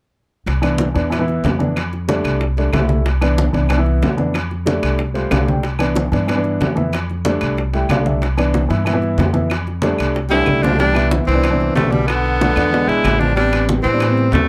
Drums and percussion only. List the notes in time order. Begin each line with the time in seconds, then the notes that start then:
0.47 high bongo, high conga, high timbale
0.63 high bongo, high conga, high timbale, claves
0.78 high bongo, high conga, low timbale
0.96 high bongo, high timbale
1.11 high bongo, high conga, high timbale, claves
1.28 high bongo, high conga
1.44 high bongo, low bongo, high conga, high timbale, low timbale
1.60 high conga
1.76 high bongo, high conga, high timbale, claves
1.93 high bongo, high conga
2.09 high bongo, high conga, high timbale, low timbale
2.25 high bongo, high conga, high timbale, claves
2.41 high bongo, high conga
2.57 high conga, high timbale
2.73 high bongo, low bongo, high conga, high timbale, low timbale, claves
2.89 high bongo, high conga
3.06 high bongo, high conga, high timbale
3.22 high bongo, high conga, high timbale, claves
3.38 high bongo, high conga, low timbale
3.54 high bongo, high timbale
3.69 high bongo, high conga, high timbale, claves
3.86 high bongo, high conga
4.02 high bongo, low bongo, high conga, high timbale, low timbale
4.18 high conga
4.34 high bongo, high conga, high timbale, claves
4.51 high bongo, high conga
4.66 high bongo, high conga, high timbale, low timbale
4.83 high bongo, high conga, high timbale, claves
4.99 high bongo, high conga
5.15 high conga, high timbale
5.31 high bongo, low bongo, high conga, high timbale, low timbale, claves
5.48 high bongo, high conga
5.63 high bongo, high conga, high timbale
5.79 high bongo, high conga, high timbale, claves
5.96 high bongo, high conga, low timbale
6.12 high bongo, high timbale
6.28 high bongo, high conga, high timbale, claves
6.44 high bongo, high conga
6.61 high bongo, low bongo, high conga, high timbale, low timbale
6.77 high conga
6.93 high bongo, high conga, high timbale, claves
7.10 high bongo, high conga
7.25 high bongo, high conga, high timbale, low timbale
7.41 high bongo, high conga, high timbale, claves
7.57 high bongo, high conga
7.74 high conga, high timbale
7.89 high bongo, low bongo, high conga, high timbale, low timbale, claves
8.06 high bongo, high conga
8.22 high bongo, high conga, high timbale
8.37 high bongo, high conga, high timbale, claves
8.54 high bongo, high conga, low timbale
8.71 high bongo, high timbale
8.86 high bongo, high conga, high timbale, claves
9.02 high bongo, high conga
9.18 high bongo, low bongo, high conga, high timbale, low timbale
9.34 high conga
9.50 high bongo, high conga, high timbale, claves
9.67 high bongo, high conga
9.82 high bongo, high conga, high timbale, low timbale
9.98 high bongo, high conga, high timbale, claves
10.15 high bongo, high conga
10.30 high bongo, high conga, high timbale
10.46 low bongo, high conga, claves
10.63 low bongo, high conga, low timbale
10.79 high bongo, high conga, high timbale
10.95 high bongo, high conga, high timbale, claves
11.11 high bongo, high conga, low timbale
11.29 high bongo, high timbale
11.43 high bongo, high conga, high timbale, claves
11.60 high bongo, high conga
11.76 high bongo, low bongo, high conga, high timbale, low timbale
11.93 high conga
12.08 high bongo, high conga, high timbale, claves
12.25 high bongo, high conga
12.41 high bongo, high conga, high timbale, low timbale
12.56 high bongo, high conga, high timbale, claves
12.73 high bongo, high conga
12.89 high conga, high timbale
13.04 high bongo, low bongo, high conga, high timbale, low timbale, claves
13.21 high bongo, high conga
13.37 high bongo, high conga, high timbale
13.53 high bongo, high conga, high timbale, claves
13.69 high bongo, high conga, low timbale
13.84 high bongo, high timbale
14.00 high bongo, high conga, high timbale, claves
14.17 high bongo, high conga
14.32 high bongo, low bongo, high conga, high timbale, low timbale